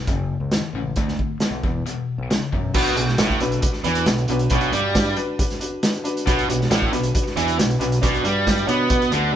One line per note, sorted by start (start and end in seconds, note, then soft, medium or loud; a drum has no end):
0.07 0.36 F#1 medium
0.07 0.48 F#2 medium
0.07 0.48 C#3 medium
0.07 kick loud
0.07 closed hi-hat medium
0.40 0.59 C#2 medium
0.51 0.72 F#2 medium
0.51 0.73 D#3 medium
0.51 snare loud
0.51 closed hi-hat medium
0.74 0.93 A1 medium
0.74 0.95 F#2 medium
0.74 0.95 C#3 medium
0.96 1.15 D2 medium
0.96 1.37 D3 medium
0.96 1.37 A3 medium
0.96 kick medium
0.96 closed hi-hat medium
1.08 snare soft
1.19 kick medium
1.40 1.61 D3 medium
1.40 1.62 B3 loud
1.40 snare loud
1.40 closed hi-hat medium
1.50 1.61 B1 medium
1.63 1.82 E2 medium
1.63 1.84 E2 medium
1.63 1.84 B2 medium
1.63 kick medium
1.86 2.26 E2 medium
1.86 2.26 B2 medium
1.86 closed hi-hat medium
2.18 2.37 B1 medium
2.30 2.50 E2 medium
2.30 2.50 C#3 medium
2.30 snare loud
2.30 closed hi-hat medium
2.52 2.72 E2 medium
2.52 2.71 F#2 medium
2.52 2.73 B2 medium
2.52 kick medium
2.74 2.95 B1 medium
2.74 2.96 B2 loud
2.74 2.92 D4 loud
2.74 2.92 F#4 medium
2.74 2.92 B4 loud
2.74 kick loud
2.74 crash loud
2.86 closed hi-hat soft
2.95 3.17 B1 medium
2.95 3.15 B2 medium
2.95 3.14 D4 medium
2.95 3.14 F#4 medium
2.95 3.14 G#4 medium
2.95 closed hi-hat medium
3.08 snare soft
3.18 3.39 A1 loud
3.18 3.40 A2 loud
3.18 3.36 D4 medium
3.18 3.36 F#4 medium
3.18 3.36 B4 loud
3.18 snare loud
3.18 closed hi-hat loud
3.29 kick medium
3.29 snare soft
3.40 3.61 B1 medium
3.40 3.59 B2 medium
3.40 3.58 D4 loud
3.40 3.58 F#4 loud
3.40 3.59 B4 loud
3.40 closed hi-hat medium
3.52 closed hi-hat soft
3.62 3.80 D4 medium
3.62 3.80 F#4 medium
3.62 3.80 B4 medium
3.62 kick loud
3.62 closed hi-hat loud
3.73 snare soft
3.84 4.05 E2 loud
3.84 4.07 E3 loud
3.84 4.03 D4 medium
3.84 4.03 F#4 medium
3.84 4.03 B4 medium
3.84 closed hi-hat medium
3.95 closed hi-hat soft
4.06 4.27 B1 medium
4.06 4.25 B2 medium
4.06 4.24 D4 medium
4.06 4.24 F#4 medium
4.06 4.24 B4 medium
4.06 snare loud
4.06 closed hi-hat medium
4.18 closed hi-hat soft
4.28 4.49 B1 medium
4.28 4.47 B2 medium
4.28 4.47 D4 loud
4.28 4.47 F#4 loud
4.28 4.47 B4 loud
4.28 closed hi-hat medium
4.39 closed hi-hat soft
4.50 4.71 B1 loud
4.50 4.72 B2 loud
4.50 4.69 D4 loud
4.50 4.69 F#4 loud
4.50 4.69 B4 loud
4.50 kick loud
4.50 closed hi-hat medium
4.61 closed hi-hat soft
4.72 5.13 G2 loud
4.72 5.16 G3 medium
4.72 4.90 D4 medium
4.72 4.90 F#4 medium
4.72 4.90 D5 loud
4.72 closed hi-hat medium
4.95 5.13 D4 medium
4.95 5.13 F#4 medium
4.95 5.13 B4 medium
4.95 kick medium
4.95 snare loud
4.95 closed hi-hat loud
5.06 closed hi-hat soft
5.17 5.34 D4 loud
5.17 5.35 F#4 loud
5.17 5.34 B4 loud
5.17 closed hi-hat medium
5.39 5.56 D4 medium
5.39 5.57 F#4 medium
5.39 5.56 B4 loud
5.39 kick loud
5.39 closed hi-hat loud
5.50 snare soft
5.50 closed hi-hat soft
5.60 5.78 D4 medium
5.60 5.78 F#4 medium
5.60 5.78 B4 medium
5.60 closed hi-hat medium
5.83 6.00 D4 medium
5.83 6.00 F#4 medium
5.83 6.00 B4 medium
5.83 snare loud
5.83 closed hi-hat medium
5.94 closed hi-hat soft
6.04 6.22 D4 loud
6.04 6.22 F#4 loud
6.04 6.22 B4 loud
6.04 closed hi-hat medium
6.17 closed hi-hat soft
6.26 6.47 B1 medium
6.26 6.47 B2 loud
6.26 6.44 D4 loud
6.26 6.44 F#4 loud
6.26 6.44 B4 loud
6.26 kick loud
6.26 closed hi-hat loud
6.39 closed hi-hat medium
6.48 6.69 B1 medium
6.48 6.66 B2 medium
6.48 6.66 D4 loud
6.48 6.66 F#4 medium
6.48 6.66 B4 loud
6.48 closed hi-hat medium
6.61 snare soft
6.69 6.91 A1 loud
6.69 6.92 A2 loud
6.69 6.87 D4 medium
6.69 6.88 F#4 medium
6.69 6.88 D5 loud
6.69 snare loud
6.69 closed hi-hat loud
6.82 kick medium
6.92 7.13 B1 medium
6.92 7.10 B2 medium
6.92 7.10 D4 loud
6.92 7.10 F#4 loud
6.92 7.10 B4 loud
6.92 closed hi-hat medium
7.03 closed hi-hat medium
7.14 7.32 D4 medium
7.14 7.32 F#4 medium
7.14 7.32 B4 loud
7.14 kick loud
7.14 closed hi-hat loud
7.26 snare soft
7.36 7.57 E2 loud
7.36 7.58 E3 loud
7.36 7.54 D4 medium
7.36 7.54 F#4 medium
7.36 7.54 B4 medium
7.36 closed hi-hat medium
7.48 closed hi-hat medium
7.58 7.79 B1 medium
7.58 7.76 B2 medium
7.58 7.76 D4 medium
7.58 7.76 F#4 medium
7.58 7.76 B4 loud
7.58 snare loud
7.58 closed hi-hat loud
7.70 closed hi-hat soft
7.79 8.00 B1 medium
7.79 7.99 B2 medium
7.79 7.97 D4 loud
7.79 7.98 F#4 loud
7.79 7.98 B4 loud
7.79 closed hi-hat medium
7.92 closed hi-hat soft
8.01 8.23 B1 medium
8.01 8.24 B2 loud
8.01 8.19 D4 loud
8.01 8.19 F#4 loud
8.01 8.19 D5 loud
8.01 kick loud
8.01 closed hi-hat loud
8.14 closed hi-hat soft
8.23 8.65 G2 medium
8.23 8.68 G3 medium
8.23 8.41 D4 medium
8.23 8.41 F#4 medium
8.23 8.42 B4 medium
8.23 closed hi-hat medium
8.44 8.63 D4 medium
8.44 8.63 F#4 medium
8.44 8.63 B4 medium
8.44 kick medium
8.44 snare loud
8.44 closed hi-hat loud
8.58 closed hi-hat soft
8.66 9.09 B2 medium
8.66 9.11 B3 loud
8.66 8.85 D4 loud
8.66 8.85 F#4 loud
8.66 8.85 C#5 loud
8.66 closed hi-hat medium
8.88 9.07 D4 medium
8.88 9.07 F#4 medium
8.88 9.07 B4 medium
8.88 kick loud
8.88 closed hi-hat loud
9.02 closed hi-hat soft
9.11 9.32 D2 medium
9.11 9.33 D3 loud
9.11 9.29 D4 medium
9.11 9.29 F#4 medium
9.11 9.29 B4 medium
9.11 closed hi-hat medium
9.31 9.36 D4 medium
9.31 9.36 F#4 medium
9.31 9.36 B4 medium